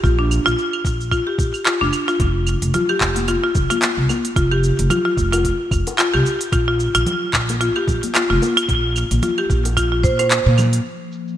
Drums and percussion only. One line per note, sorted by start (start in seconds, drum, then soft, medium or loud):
0.04 kick loud
0.04 shaker soft
0.31 claves medium
0.31 shaker medium
0.47 shaker soft
0.59 shaker soft
0.73 claves medium
0.85 kick medium
0.85 shaker medium
1.01 shaker soft
1.12 kick medium
1.12 claves medium
1.12 shaker soft
1.39 kick loud
1.39 shaker medium
1.54 claves medium
1.54 shaker soft
1.66 clap medium
1.66 shaker soft
1.93 claves medium
1.93 shaker medium
2.08 shaker soft
2.20 kick loud
2.20 open hi-hat soft
2.20 shaker soft
2.47 claves medium
2.47 shaker medium
2.62 open hi-hat medium
2.62 shaker soft
2.74 open hi-hat soft
2.74 low conga medium
2.74 shaker soft
2.89 claves medium
3.01 kick medium
3.01 clap medium
3.01 shaker medium
3.16 open hi-hat medium
3.16 high bongo soft
3.16 high conga medium
3.16 shaker soft
3.28 open hi-hat soft
3.28 claves medium
3.28 shaker soft
3.55 kick loud
3.55 low conga medium
3.55 shaker medium
3.70 open hi-hat medium
3.70 high conga medium
3.70 claves medium
3.70 shaker soft
3.82 clap medium
3.82 open hi-hat soft
3.82 shaker soft
4.09 high bongo soft
4.09 high conga medium
4.09 claves medium
4.09 shaker medium
4.25 open hi-hat soft
4.25 shaker soft
4.36 kick loud
4.36 open hi-hat soft
4.36 shaker soft
4.52 claves medium
4.64 shaker medium
4.79 open hi-hat medium
4.79 shaker soft
4.90 open hi-hat soft
4.90 low conga medium
4.90 claves medium
4.90 shaker soft
5.17 kick medium
5.17 shaker medium
5.33 open hi-hat medium
5.33 high bongo medium
5.33 claves medium
5.33 shaker soft
5.44 kick medium
5.44 open hi-hat soft
5.44 shaker soft
5.71 kick loud
5.71 claves medium
5.71 shaker medium
5.87 open hi-hat medium
5.87 high bongo medium
5.87 shaker soft
5.99 clap medium
5.99 open hi-hat soft
5.99 shaker soft
6.14 claves medium
6.26 shaker medium
6.41 open hi-hat medium
6.41 shaker soft
6.52 kick loud
6.52 open hi-hat soft
6.52 claves medium
6.52 shaker soft
6.80 shaker medium
6.95 open hi-hat medium
6.95 claves medium
6.95 shaker soft
7.06 open hi-hat soft
7.06 low conga medium
7.06 shaker soft
7.33 kick medium
7.33 clap medium
7.33 claves medium
7.33 shaker medium
7.49 open hi-hat medium
7.49 high bongo soft
7.49 high conga medium
7.49 shaker soft
7.61 open hi-hat soft
7.61 shaker soft
7.76 claves medium
7.88 kick loud
7.88 low conga medium
7.88 shaker medium
8.03 open hi-hat medium
8.03 high conga medium
8.03 shaker soft
8.15 clap medium
8.15 open hi-hat soft
8.15 claves medium
8.15 shaker soft
8.42 high bongo medium
8.42 high conga medium
8.42 shaker medium
8.57 open hi-hat medium
8.57 claves medium
8.57 shaker soft
8.69 kick loud
8.69 open hi-hat soft
8.69 shaker soft
8.96 claves medium
8.96 shaker medium
9.11 open hi-hat medium
9.11 high conga medium
9.11 shaker soft
9.22 open hi-hat soft
9.22 low conga medium
9.22 shaker soft
9.38 claves medium
9.50 kick medium
9.50 high conga soft
9.50 shaker medium
9.65 open hi-hat medium
9.65 high bongo medium
9.65 shaker soft
9.77 kick medium
9.77 open hi-hat soft
9.77 claves medium
9.77 shaker soft
10.04 kick loud
10.04 shaker medium
10.19 open hi-hat medium
10.19 high bongo medium
10.19 claves medium
10.19 shaker soft
10.31 clap medium
10.31 open hi-hat soft
10.31 shaker soft
10.58 low conga medium
10.58 claves medium
10.58 shaker medium
10.73 open hi-hat medium
10.73 shaker soft
10.85 shaker soft
11.12 shaker medium
11.28 shaker soft